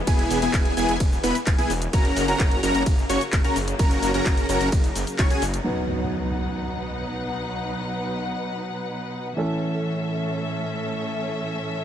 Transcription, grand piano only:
5.64 F#3 B3 D#4 B4
9.36 E3 A3 C#4 A4

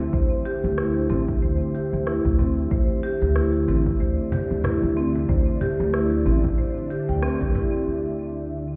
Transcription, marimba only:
0.13 C5
0.45 G4
0.78 E4
1.10 C4
1.42 C5
1.75 G4
2.07 E4
2.39 C4
2.71 C5
3.03 G4
3.36 E4
3.68 C4
4.00 C5
4.32 G4
4.65 E4
4.97 C4
5.29 C5
5.61 G4
5.93 E4
6.26 C4
6.58 C5
6.90 G4
7.09 G5
7.22 C4
7.41 G4
7.55 E4
7.73 C4

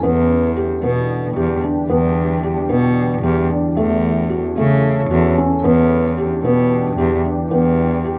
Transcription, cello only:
0.04 E2
0.83 B2
1.37 E2
1.90 E2
2.70 B2
3.22 E2
3.77 E2
4.57 C#3
5.10 E2
5.63 E2
6.42 B2
6.96 E2
7.51 E2

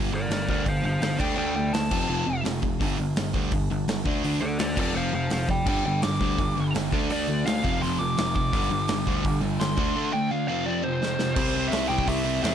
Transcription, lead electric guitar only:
0.14 A#4 D5
0.32 A#4 D5
0.50 A#4 D5
0.69 C5 F5
0.85 C5 F5
1.02 C5 F5
1.20 D5 G5
1.37 D5 G5
1.56 D5 G5
1.73 A5
4.41 A4 D5
4.59 A4 D5
4.80 A4 D5
4.96 C5 F5
5.15 C5 F5
5.32 C5 F5
5.50 D5 G5
5.68 D5 G5
5.85 D5 G5
6.04 D6
7.12 D5
7.47 F5
7.82 C6
7.99 D6
8.36 D6
9.60 C6
10.13 G5
10.31 F5
10.48 F5
10.66 D5
10.84 C5
11.35 C5
11.68 E5
11.88 G5
12.08 E5
12.43 E5

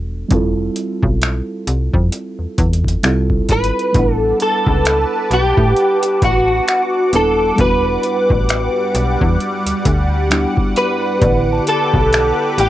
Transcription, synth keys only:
Already playing: G3 B3 D4 F#4 A4
0.28 G3 C4 E4
0.33 F4 A4
3.03 G3 C4 E4 F4 A4
3.92 G3 B3 D4
3.97 E4 F#5
7.12 G3 B3 D4 E4 A4
7.56 G3 B3 D4
7.60 E4 F#4
10.30 G3 B3 D4 E4 G4
11.19 D3 B3 G4
11.24 E4 F#5

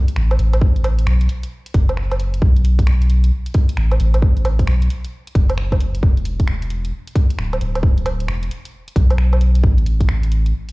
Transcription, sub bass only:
0.17 A1
0.39 A1
1.07 B1
1.74 F#1
2.42 B1
3.77 A1
4.00 A1
4.67 B1
5.35 F#1
6.03 E1
7.38 D1
7.61 D1
8.28 E1
8.96 B1
9.64 A1

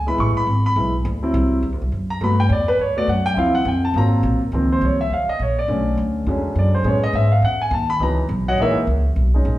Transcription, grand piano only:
0.07 G#3 B3 E4 B5
0.20 C#6
0.37 B5
0.66 B5
0.76 G#3 B3 E4
1.22 F#3 C4 E4
2.10 A#5
2.21 A3 B3 F#4 B5
2.40 G5
2.48 C#5
2.53 D5
2.68 B4
2.81 C#5
2.97 A3 B3 F#4 D5
3.09 F#5
3.26 G5
3.34 F3 C4 E4 E5
3.39 F5
3.55 F#5
3.68 G5
3.85 A5
3.96 F#3 A#3 C4 F4 A#5
4.53 D#3 F3 A#3 C4
4.72 C5
4.85 C#5
5.01 E5
5.13 F5
5.29 D#5
5.42 C#5
5.59 D5
5.68 D3 A3 C#4
6.27 D3 F#3 G#3 C#4
6.59 D5
6.75 C5
6.85 G#3 B3 C#4 C#5
7.04 D#5
7.15 E5
7.32 F5
7.45 F#5
7.62 G#5
7.74 A5
7.90 B5
8.00 E3 F#3 B3 D#4 A#5
8.48 F#4 C#5 D#5 F#5
8.60 E3 G#3 A#3 D#4 E4 A#4 C#5 E5
9.34 G#3 C#4 D#4

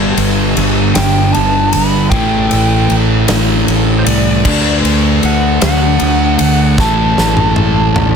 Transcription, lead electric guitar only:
0.95 G5
1.34 A5
1.73 B5
2.10 G5
3.99 C5
4.04 D5
5.25 F#5
5.62 F#5
6.80 A5

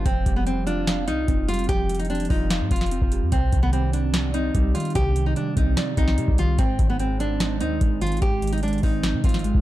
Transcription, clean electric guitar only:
0.05 F3
0.26 G3
0.46 C4
0.67 F4
0.87 F5
1.08 F4
1.28 C4
1.48 G3
1.69 F3
1.89 G3
2.10 C4
2.30 F4
2.51 F5
2.71 F4
2.92 C4
3.12 G3
3.32 C3
3.53 D#3
3.73 G3
3.94 C4
4.14 D5
4.34 C4
4.54 G3
4.75 D#3
4.95 C3
5.16 D#3
5.36 G3
5.57 C4
5.77 D5
5.97 C4
6.18 G3
6.38 D#3
6.59 G#2
6.79 D#3
6.99 G#3
7.19 C4
7.40 D#4
7.60 C4
7.81 G#3
8.02 D#3
8.22 G#2
8.43 D#3
8.63 G#3
8.83 C4
9.03 D#4
9.24 C4
9.44 G#3

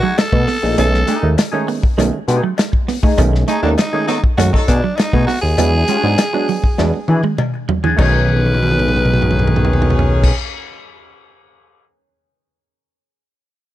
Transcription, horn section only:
3.62 F#3 D#4 A4
4.08 F#3 D#4 A4
4.53 F#3 D#4 A4
7.98 D#3 C#4 G#4

